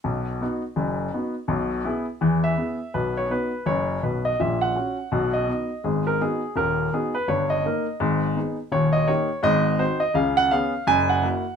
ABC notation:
X:1
M:4/4
L:1/8
Q:"Swing" 1/4=166
K:B
V:1 name="Grand piano"
z8 | z4 z e3 | B c B2 c2 B d | e f4 d3 |
G A G2 A2 G B | c d4 z3 | c d c2 d2 ^B d | ^e f e2 g f3 |]
V:2 name="Grand piano"
[B,,,B,,]2 [B,DF]2 [F,,,F,,]2 [B,DF]2 | [B,,,B,,]2 [B,EG]2 [E,,E,]2 [B,EG]2 | [B,,,B,,]2 [B,DF]2 [F,,,F,,]2 [B,,,B,,]2 | [A,,,A,,]2 [CF]2 [B,,,B,,]2 [B,DF]2 |
[G,,,G,,]2 [B,DF]2 [D,,,D,,]2 [B,DF]2 | [=G,,,=G,,]2 [A,DA]2 [^G,,,^G,,]2 [B,DG]2 | [D,,,D,,]2 [A,D=G]2 [^G,,,G,,]2 [^B,DF]2 | [C,,C,]2 [B,CG]2 [F,,,F,,]2 [A,EF]2 |]